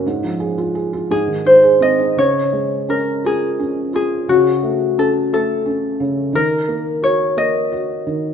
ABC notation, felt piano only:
X:1
M:6/8
L:1/16
Q:3/8=58
K:Db
V:1 name="Felt piano"
A,, F, A F A F A,, E, E A C E | D,2 A,2 D2 F2 D2 F2 | D,2 =A,2 D2 A,2 D2 D,2 | E,2 B,2 G2 B,2 G2 E,2 |]